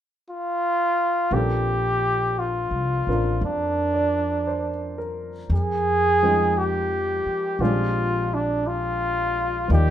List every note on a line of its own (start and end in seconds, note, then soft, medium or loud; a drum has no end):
0.30 1.35 F4 medium
1.31 2.67 A#1 medium
1.31 5.51 F3 soft
1.31 5.52 A#3 soft
1.31 3.07 C4 soft
1.31 3.08 D4 soft
1.31 2.40 G4 medium
1.31 5.52 A4 soft
2.39 3.42 F4 medium
2.71 3.03 C2 soft
3.07 3.39 A1 soft
3.07 5.51 C4 soft
3.07 5.51 D4 soft
3.07 5.52 F4 soft
3.07 4.97 A#4 soft
3.41 5.47 F2 medium
3.41 5.16 D4 medium
3.94 4.68 D5 soft
4.47 5.31 C5 soft
4.98 5.73 A#4 soft
5.50 7.23 F2 medium
5.50 6.59 G#4 medium
6.23 7.59 F3 soft
6.23 7.60 G#3 soft
6.23 7.60 C4 soft
6.23 7.61 D#4 soft
6.23 7.61 G5 soft
6.58 7.62 G4 medium
7.26 muted upright bass stroke soft
7.59 9.65 A#1 medium
7.59 9.67 F3 soft
7.59 9.70 G#3 soft
7.59 9.70 C4 soft
7.59 9.70 D4 soft
7.59 8.36 F4 medium
7.59 9.71 G4 soft
8.34 8.69 D4 medium
8.67 9.71 F4 medium
9.68 9.90 D#2 medium
9.68 9.90 F3 soft
9.68 9.90 A#3 soft
9.68 9.90 D#4 soft
9.68 9.90 D5 soft
9.73 9.90 G4 soft
9.73 9.90 G4 medium